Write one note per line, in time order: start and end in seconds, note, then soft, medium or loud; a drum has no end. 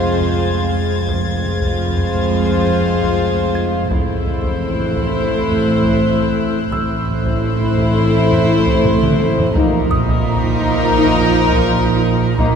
0.00 1.04 F1 medium
0.00 1.04 F2 medium
0.00 1.05 F2 soft
0.00 1.04 G#3 medium
0.00 1.04 C4 soft
0.00 1.05 F4 medium
0.00 1.04 G#4 soft
0.00 1.05 C5 medium
0.00 3.53 G#6 soft
0.00 3.52 A6 soft
0.00 impact medium
0.21 taiko medium
1.07 3.87 F1 medium
1.07 3.87 F2 medium
1.07 3.87 F2 soft
1.07 3.86 G#3 medium
1.07 3.87 C4 soft
1.07 3.87 F4 medium
1.07 3.87 G#4 soft
1.07 3.87 C5 medium
1.07 taiko medium
1.44 taiko low soft
1.61 taiko medium
1.97 taiko low soft
2.14 taiko medium
2.68 taiko low soft
3.03 taiko medium
3.55 5.63 G#6 soft
3.91 6.72 A1 medium
3.91 6.73 A1 medium
3.91 6.72 A2 soft
3.91 6.70 A3 medium
3.91 6.57 C4 medium
3.91 6.70 E4 medium
3.91 6.57 E4 medium
3.91 6.70 C5 medium
3.91 9.17 E6 soft
3.91 7.76 G6 soft
3.91 taiko medium
4.26 taiko low medium
4.44 taiko medium
4.65 9.18 F#6 soft
4.79 taiko low soft
4.97 taiko medium
5.50 taiko low soft
5.85 taiko medium
6.72 9.52 A1 medium
6.72 9.52 A2 medium
6.72 9.52 A3 medium
6.72 9.52 C4 medium
6.72 9.52 E4 medium
6.72 9.52 C5 medium
6.72 8.81 E6 medium
6.72 taiko medium
7.08 taiko low medium
7.26 taiko medium
7.61 taiko low soft
7.79 taiko medium
8.32 taiko low medium
8.67 taiko medium
8.85 taiko low-mid medium
9.02 taiko mid medium
9.20 taiko high medium
9.38 taiko low loud
9.55 12.37 A#1 medium
9.55 12.38 A#1 medium
9.55 12.37 A#2 medium
9.55 12.34 F3 medium
9.55 9.80 A#3 medium
9.55 9.80 D#4 medium
9.55 12.34 D#4 medium
9.55 12.34 A#4 medium
9.55 taiko loud
9.91 11.99 D#6 medium
9.91 taiko low medium
10.09 taiko medium
10.44 taiko low soft
10.61 taiko medium
10.98 11.22 A#3 medium
10.98 11.22 D#4 medium
11.15 taiko low soft
11.50 taiko medium
12.37 12.55 A#1 medium
12.37 12.55 A#2 medium
12.37 12.55 F3 loud
12.37 12.55 A#3 medium
12.37 12.55 D#4 loud
12.37 12.55 D#4 medium
12.37 12.55 A#4 loud
12.37 taiko medium